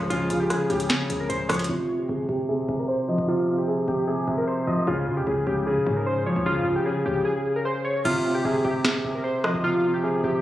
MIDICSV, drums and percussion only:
0, 0, Header, 1, 2, 480
1, 0, Start_track
1, 0, Key_signature, -4, "minor"
1, 0, Tempo, 397351
1, 126, Time_signature, 4, 2, 24, 8
1, 12583, End_track
2, 0, Start_track
2, 0, Title_t, "Drums"
2, 126, Note_on_c, 9, 42, 74
2, 247, Note_off_c, 9, 42, 0
2, 364, Note_on_c, 9, 42, 86
2, 485, Note_off_c, 9, 42, 0
2, 606, Note_on_c, 9, 37, 72
2, 608, Note_on_c, 9, 42, 79
2, 727, Note_off_c, 9, 37, 0
2, 728, Note_off_c, 9, 42, 0
2, 846, Note_on_c, 9, 42, 48
2, 965, Note_off_c, 9, 42, 0
2, 965, Note_on_c, 9, 42, 82
2, 1083, Note_off_c, 9, 42, 0
2, 1083, Note_on_c, 9, 42, 75
2, 1085, Note_on_c, 9, 38, 125
2, 1204, Note_off_c, 9, 42, 0
2, 1206, Note_off_c, 9, 38, 0
2, 1327, Note_on_c, 9, 42, 87
2, 1448, Note_off_c, 9, 42, 0
2, 1568, Note_on_c, 9, 42, 72
2, 1689, Note_off_c, 9, 42, 0
2, 1805, Note_on_c, 9, 37, 102
2, 1805, Note_on_c, 9, 42, 50
2, 1808, Note_on_c, 9, 46, 89
2, 1865, Note_off_c, 9, 42, 0
2, 1865, Note_on_c, 9, 42, 61
2, 1925, Note_off_c, 9, 37, 0
2, 1925, Note_off_c, 9, 42, 0
2, 1925, Note_on_c, 9, 42, 74
2, 1929, Note_off_c, 9, 46, 0
2, 1985, Note_off_c, 9, 42, 0
2, 1985, Note_on_c, 9, 42, 85
2, 2106, Note_off_c, 9, 42, 0
2, 9726, Note_on_c, 9, 49, 92
2, 9847, Note_off_c, 9, 49, 0
2, 10686, Note_on_c, 9, 38, 119
2, 10807, Note_off_c, 9, 38, 0
2, 11404, Note_on_c, 9, 37, 100
2, 11525, Note_off_c, 9, 37, 0
2, 12583, End_track
0, 0, End_of_file